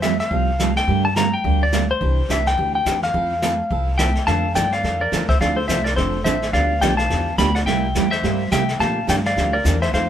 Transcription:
Already playing: F2
0.02 F3 G3 C4 F4 A4 E5, snare, hi-hat pedal
0.19 E5, snare
0.31 C2 F3 G3 C4 F4 A4 F5, brush sweep, kick
0.59 F3 G3 C4 F4 A4, snare, hi-hat pedal
0.76 G5, snare
0.87 G2 D3 G3 A#3 D4 G4, brush sweep, kick
1.05 A5
1.16 D3 G3 A#3 D4 G4 A#5, snare, hi-hat pedal
1.33 G5
1.44 D2 D3 G3 A#3 D4 G4, brush sweep, kick
1.63 D5
1.72 D3 G3 A#3 D4 G4, snare, hi-hat pedal
1.91 C5
2.01 C2 C3 E3 D4 G4, brush sweep, kick
2.29 C2 C3 E3 D4 G4 E5, snare, hi-hat pedal
2.46 G5, snare
2.57 D2 C3 E3 D4 G4, brush sweep, kick
2.75 G5
2.85 E2 C3 E3 D4 G4, snare, hi-hat pedal
3.03 F5, snare
3.13 F2 F3 C4 E4 A4, brush sweep, kick
3.42 F3 C4 E4 A4, snare, hi-hat pedal
3.70 C2 F3 C4 E4 A4, brush sweep, kick
3.98 F3 C4 E4 A4 E5 G5, snare, hi-hat pedal
4.15 snare
4.27 F2 D3 F3 A#3 D4 A4 F5 A5, brush sweep, kick, snare
4.54 G2 D3 F3 A#3 D4 A4 D5 G5, kick, snare, hi-hat pedal
4.72 D5 F5, snare
4.83 F2 D3 F3 A#3 D4 A4, brush sweep, kick, snare
5.01 A#4 D5
5.12 E2 D3 F3 A#3 D4 A4, kick, snare, hi-hat pedal
5.29 C5 E5, kick, snare
5.40 D2 D3 F3 C4 D4 A4 D5 F5, brush sweep, kick, snare
5.56 A4 C5
5.68 C2 D3 F3 C4 D4 A4 C5 E5, kick, snare, hi-hat pedal
5.84 A#4 D5, snare
5.96 F1 D3 F3 C4 D4 A4 C5, brush sweep, kick, snare
6.24 A1 D3 F3 C4 D4 A4 C5 E5, kick, snare, hi-hat pedal
6.42 snare
6.53 D2 D3 F3 B3 D4 G4 D5 F5, brush sweep, kick, snare
6.81 B1 D3 F3 B3 D4 G4 D5 G5, kick, snare, hi-hat pedal
6.97 F5 A5, snare
7.10 E2 D3 F3 B3 D4 G4, brush sweep, kick, snare
7.38 D2 D3 F3 B3 D4 G4 G5 B5, kick, snare, hi-hat pedal
7.55 D5 F#5, snare
7.66 C2 C3 G3 A#3 E4 G4 E5 G5, brush sweep, kick, snare
7.95 E2 C3 G3 A#3 E4 G4, kick, snare, hi-hat pedal
8.11 C5 E5, snare
8.23 G2 C3 G3 A#3 E4 G4, brush sweep, kick, snare
8.51 C3 G3 A#3 E4 G4 E5 G5, kick, snare, hi-hat pedal
8.68 snare
8.79 A#2 D3 F3 A#3 D4 G4 F5 A5, brush sweep, kick, snare
9.07 G2 D3 F3 A#3 D4 G4 D5 G5, kick, snare, hi-hat pedal
9.25 D5 F5, snare
9.36 D2 D3 F3 A#3 D4 G4, brush sweep, kick, snare
9.53 A#4 D5
9.64 E2 D3 F3 A#3 D4 G4, kick, snare, hi-hat pedal
9.82 C5 E5, snare
9.93 F2 F3 C4 D#4 A4 C5 F5, brush sweep, kick, snare

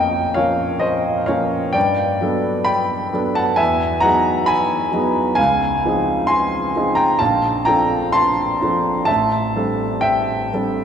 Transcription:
Already playing: A#1 F2 F3 A#3 C#4 A#4 C#5 D#5 F5 G5 G#5 A#5
0.34 F3 A#3 C#4 A#4 C#5 F5
0.80 C5 D#5
1.26 F3 A#3 C#4 A#4 C#5 F5
1.73 G2 D5 G5
2.21 F#3 B3 D4 A4
2.65 G5 B5
3.13 F#3 B3 D4 A4
3.35 F#5 A5
3.56 E2 E5 G#5
4.00 F#3 B3 D#4 F#5 A#5
4.05 G#4
4.46 G#5 B5
4.92 F#3 B3 D#4 G#4
5.35 C#2 F5 G#5
5.85 F3 C4 D#4 G#4
6.27 G#5 C6
6.76 F3 C4 D#4 G#4
6.95 G5 A#5
7.19 A#1 F5 A5
7.65 F3 C4 D4 A4 G5 A#5
8.13 A5 C6
8.62 F3 C4 D4 A4
9.05 A1 E5 A5
9.56 G3 C4 D4 A4
10.01 E5 G5
10.53 G3 C4 D4 A4

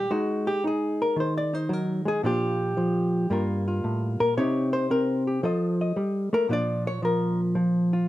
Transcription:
Already playing: G4
0.11 G#3 D#4 F#4
0.47 G4
0.64 D#4 G#4
1.02 A#4
1.16 D#3 C5
1.38 D5
1.54 D#4 C5
1.69 F#3
1.73 A#4
2.05 G#3 G#4
2.23 A#2 F3 D4 F4 G4
2.77 F3
3.30 G2 G3 A#3 F4 A#4
3.68 F4
3.84 A2
4.20 A#2 A#4
4.37 C3 C4 D#4 G4 C#5
4.73 C5
4.90 C4 A#4
5.27 G4
5.43 F3 A4 C5 D#5
5.81 D#5
5.96 G3
6.33 A3 A#4
6.49 A#2 F3 D4 F4 D5
6.87 C#5
7.02 F3 A#4
7.55 F3
7.93 F4

